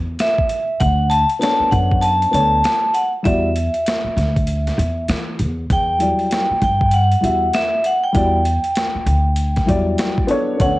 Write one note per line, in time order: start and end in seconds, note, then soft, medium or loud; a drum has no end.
0.00 0.15 E2 medium
0.19 0.83 E5 medium
0.19 snare loud
0.19 closed hi-hat medium
0.38 kick medium
0.49 closed hi-hat medium
0.80 1.22 D2 loud
0.80 1.12 F#5 medium
0.80 kick loud
0.80 closed hi-hat medium
1.10 1.24 A5 loud
1.10 closed hi-hat medium
1.30 closed hi-hat soft
1.39 2.27 B3 medium
1.39 2.28 D4 medium
1.39 2.29 A4 medium
1.39 2.29 C#5 medium
1.39 1.70 A5 loud
1.39 closed hi-hat medium
1.44 snare loud
1.60 muted upright bass stroke soft
1.71 2.24 F#2 loud
1.71 2.03 F#5 medium
1.71 kick medium
1.71 closed hi-hat medium
1.92 kick loud
2.01 2.32 A5 loud
2.01 closed hi-hat loud
2.22 closed hi-hat soft
2.31 2.59 D2 medium
2.31 2.56 B3 medium
2.31 2.56 D4 medium
2.31 2.57 A4 medium
2.31 2.57 C#5 medium
2.31 2.96 A5 loud
2.31 closed hi-hat medium
2.64 snare loud
2.64 closed hi-hat medium
2.94 3.08 F#5 medium
2.94 closed hi-hat medium
3.23 3.67 E2 loud
3.23 3.47 G3 medium
3.23 3.48 E4 medium
3.23 3.48 F#4 medium
3.23 3.49 D5 medium
3.23 5.04 E5 medium
3.23 kick loud
3.23 closed hi-hat medium
3.56 closed hi-hat medium
3.74 closed hi-hat soft
3.86 snare loud
3.86 closed hi-hat loud
4.04 muted upright bass stroke soft
4.17 4.68 D2 medium
4.17 snare soft
4.17 closed hi-hat medium
4.36 kick loud
4.36 closed hi-hat medium
4.47 closed hi-hat medium
4.67 snare soft
4.67 closed hi-hat soft
4.78 5.04 E2 medium
4.78 closed hi-hat medium
5.08 5.41 E3 medium
5.08 snare loud
5.08 closed hi-hat medium
5.39 5.65 E2 medium
5.39 closed hi-hat medium
5.70 6.11 E2 loud
5.70 6.63 G5 loud
5.70 kick loud
5.70 closed hi-hat medium
5.99 6.46 F#3 medium
5.99 6.45 G3 medium
5.99 6.46 E4 medium
5.99 6.47 D5 medium
5.99 closed hi-hat medium
6.19 closed hi-hat soft
6.31 snare loud
6.31 closed hi-hat loud
6.50 muted upright bass stroke soft
6.62 7.13 G2 loud
6.62 6.94 G5 medium
6.62 kick medium
6.62 closed hi-hat medium
6.81 kick loud
6.91 7.56 F#5 loud
6.91 closed hi-hat medium
7.12 closed hi-hat soft
7.21 7.49 E2 medium
7.21 7.45 G3 medium
7.21 7.46 E4 medium
7.21 7.47 F#4 medium
7.21 7.47 E5 medium
7.21 closed hi-hat medium
7.54 7.86 E5 medium
7.54 snare loud
7.54 closed hi-hat medium
7.84 8.04 F#5 medium
7.84 closed hi-hat medium
8.04 10.26 G5 medium
8.13 8.56 E2 loud
8.13 8.37 G3 medium
8.13 8.38 E4 medium
8.13 8.38 F#4 medium
8.13 8.39 D5 medium
8.13 kick loud
8.13 closed hi-hat medium
8.45 closed hi-hat medium
8.64 closed hi-hat soft
8.76 snare loud
8.76 closed hi-hat loud
8.95 muted upright bass stroke soft
9.06 9.58 D2 loud
9.06 closed hi-hat medium
9.36 closed hi-hat medium
9.56 kick medium
9.56 snare soft
9.56 closed hi-hat soft
9.66 9.94 E2 loud
9.66 10.55 F#3 medium
9.66 10.54 G3 medium
9.66 10.54 E4 medium
9.66 10.56 D5 medium
9.66 kick medium
9.66 closed hi-hat medium
9.98 snare loud
9.98 closed hi-hat medium
10.18 kick medium
10.27 10.56 B3 medium
10.27 10.64 D4 medium
10.27 10.59 A4 medium
10.27 10.59 C#5 loud
10.27 closed hi-hat medium
10.57 10.79 D2 medium
10.57 10.79 B3 medium
10.57 10.67 C#4 medium
10.57 10.79 A4 medium
10.57 10.79 C#5 medium
10.57 kick loud
10.57 closed hi-hat medium
10.62 10.79 D4 medium
10.62 10.79 F#5 medium